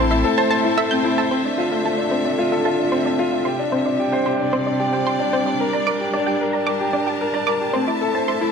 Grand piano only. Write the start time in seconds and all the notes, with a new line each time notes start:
Already playing: C4 E4 A4 C5
0.10 E4
0.24 A4
0.38 C5
0.51 C5
0.65 E4
0.78 A4
0.92 C4
1.05 E4
1.18 A5
1.31 C4
1.45 D4
1.58 F4
1.71 A4
1.85 F4
1.98 D4
2.11 C4
2.25 D4
2.38 F4
2.52 A4
2.65 F4
2.79 D4
2.92 C4
3.06 D4
3.19 F4
3.32 A4
3.46 G4
3.59 D4
3.72 C4
3.86 D4
3.99 G4
4.13 C5
4.26 G4
4.39 D4
4.53 C4
4.66 D4
4.80 G4
4.93 C5
5.06 G4
5.19 D4
5.33 C4
5.47 D4
5.60 A#4
5.74 D5
5.87 A#4
6.01 G4
6.14 D4
6.28 G4
6.41 A#4
6.54 D5
6.68 A#4
6.81 G4
6.94 D4
7.07 G4
7.21 A#4
7.34 D5
7.48 A#4
7.61 G4
7.75 C4
7.88 E4
8.01 A4
8.15 C5
8.28 A4
8.41 E4